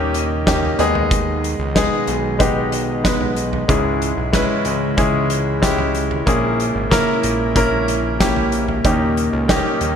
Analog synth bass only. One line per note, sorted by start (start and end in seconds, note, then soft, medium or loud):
0.00 0.75 D#2 medium
0.79 1.55 D#2 loud
1.59 1.89 C#2 medium
2.08 3.65 B1 medium
3.69 4.14 C#2 loud
4.17 4.47 B1 medium
4.65 6.23 C#2 medium
6.27 6.72 A#1 loud
6.75 7.05 G#1 medium
7.24 8.81 A#1 medium
8.85 9.30 D#2 loud
9.33 9.63 C#2 medium
9.81 9.96 D#2 medium